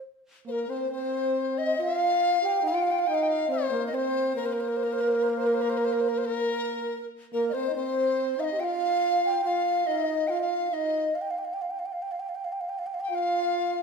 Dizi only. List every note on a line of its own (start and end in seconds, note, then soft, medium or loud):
0.48 0.71 A#4 medium
0.48 0.52 C5 medium
0.70 0.91 C5 medium
0.92 1.60 C5 medium
1.58 1.82 D#5 medium
1.80 2.66 F5 medium
2.66 2.76 F5 medium
2.75 2.84 G5 medium
2.83 2.92 F5 medium
2.91 3.01 G5 medium
2.99 3.08 F5 medium
3.07 3.16 G5 medium
3.15 3.24 F5 medium
3.23 3.30 G5 medium
3.29 3.51 F5 medium
3.51 3.85 C5 medium
3.87 3.96 D#5 medium
3.95 4.36 C5 medium
4.36 4.47 A#4 medium
4.46 4.55 C5 medium
4.53 4.62 A#4 medium
4.60 4.70 C5 medium
4.69 4.78 A#4 medium
4.77 4.85 C5 medium
4.84 4.94 A#4 medium
4.93 5.02 C5 medium
5.01 5.09 A#4 medium
5.08 5.17 C5 medium
5.16 5.24 A#4 medium
5.23 5.31 C5 medium
5.30 5.39 A#4 medium
5.37 5.48 C5 medium
5.46 5.56 A#4 medium
5.54 5.63 C5 medium
5.62 5.71 A#4 medium
5.70 5.79 C5 medium
5.78 5.86 A#4 medium
5.85 5.94 C5 medium
5.93 6.02 A#4 medium
6.01 6.10 C5 medium
6.09 6.19 A#4 medium
6.18 6.27 C5 medium
6.25 7.06 A#4 medium
7.33 7.47 A#4 medium
7.49 7.74 C5 medium
7.49 7.54 D#5 soft
7.76 8.41 C5 medium
8.40 8.45 F5 medium
8.44 8.61 D#5 medium
8.60 8.65 G5 medium
8.64 9.44 F5 medium
9.45 9.88 F5 medium
9.87 10.29 D#5 medium
10.27 10.41 F5 medium
10.27 10.31 G5 medium
10.41 10.75 F5 medium
10.73 11.16 D#5 medium
13.03 13.10 G5 medium
13.10 13.16 G5 medium
13.15 13.83 F5 medium